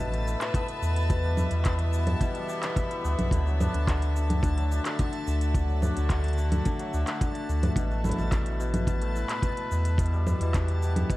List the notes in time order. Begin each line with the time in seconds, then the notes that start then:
Already playing: A1 A2 A3 B3 D4 E4 B4 E5 A5
0.00 B2, shaker
0.13 A3, closed hi-hat, shaker
0.27 E4, shaker
0.41 B2, clap, closed hi-hat, shaker
0.54 B3, kick, closed hi-hat, shaker
0.68 closed hi-hat, shaker
0.82 E2 B2, shaker
0.96 closed hi-hat, shaker
0.99 shaker
1.01 shaker
1.04 shaker
1.06 shaker
1.08 B2 E3, kick, closed hi-hat, shaker
1.10 shaker
1.24 G3, shaker
1.37 E4, low conga, shaker
1.51 E2 B2, closed hi-hat, shaker
1.57 B3
1.65 B3, kick, clap, closed hi-hat, shaker
1.79 closed hi-hat, shaker
1.93 B2, shaker
2.07 G4, closed hi-hat, low conga, shaker
2.21 B2, kick, closed hi-hat, shaker
2.35 G3, closed hi-hat, shaker
2.49 G4, shaker
2.63 B2, clap, closed hi-hat, shaker
2.76 E4, kick, closed hi-hat, shaker
2.91 E4, closed hi-hat, shaker
3.04 D2 B3, shaker
3.19 B1, closed hi-hat, low conga, shaker
3.31 D2 D3, kick, closed hi-hat, shaker
3.46 F#3, shaker
3.59 D4, low conga, shaker
3.64 F#4
3.73 D2 D3, closed hi-hat
3.87 D3 A3, kick, clap, closed hi-hat, shaker
4.02 closed hi-hat, shaker
4.15 D3, shaker
4.30 closed hi-hat, low conga, shaker
4.43 D3, kick, closed hi-hat, shaker
4.58 F#3, closed hi-hat, shaker
4.71 D4, shaker
4.85 D3, clap, closed hi-hat, shaker
4.99 D3, kick, closed hi-hat, shaker
5.13 closed hi-hat, shaker
5.27 D2 D3, shaker
5.41 closed hi-hat, shaker
5.55 D3, kick, closed hi-hat, shaker
5.68 F#3, shaker
5.82 D4, low conga, shaker
5.96 D2 D3, closed hi-hat, shaker
6.10 D3, kick, clap, closed hi-hat, shaker
6.24 closed hi-hat, shaker
6.28 closed hi-hat
6.33 closed hi-hat
6.38 D3, shaker
6.52 closed hi-hat, low conga, shaker
6.65 D3, kick, closed hi-hat, shaker
6.79 F#3, closed hi-hat, shaker
6.94 D2 D4, shaker
7.07 D3, clap, closed hi-hat, shaker
7.21 D3, kick, closed hi-hat, shaker
7.35 closed hi-hat, shaker
7.49 D2 D3, shaker
7.63 closed hi-hat, low conga, shaker
7.76 A1 A2 B2, kick, closed hi-hat, shaker
7.91 A3, shaker
8.04 E4, low conga, shaker
8.09 closed hi-hat, low conga
8.14 low conga
8.18 A1 B2, low conga, shaker
8.23 low conga
8.28 kick, low conga
8.32 B2, clap, closed hi-hat, shaker
8.46 closed hi-hat, shaker
8.60 B2, shaker
8.74 B4, closed hi-hat, low conga, shaker
8.87 B2, kick, closed hi-hat, shaker
9.02 A3, closed hi-hat, shaker
9.16 E4, shaker
9.29 B2, clap, closed hi-hat, shaker
9.42 B2, kick, closed hi-hat, shaker
9.57 closed hi-hat, shaker
9.71 E2 B2, shaker
9.85 closed hi-hat, shaker
9.98 B2 E3, kick, closed hi-hat, shaker
10.06 closed hi-hat
10.13 G3, shaker
10.27 E4, low conga, shaker
10.35 G4
10.41 E2 B2, closed hi-hat, shaker
10.49 B3
10.54 B2, kick, clap, closed hi-hat, shaker
10.68 closed hi-hat, shaker
10.83 B2, shaker
10.96 closed hi-hat, low conga, shaker
11.09 A1 A2 B2, kick, closed hi-hat, shaker